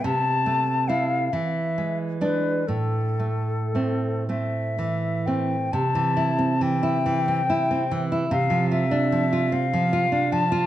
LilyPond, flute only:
\new Staff \with { instrumentName = "Flute" } { \time 6/8 \key a \minor \tempo 4. = 46 a''4 f''8 e''4 b'8 | a'4. e''4 g''8 | \key c \major a''4 g''2 | f''8 e''4 f''4 a''8 | }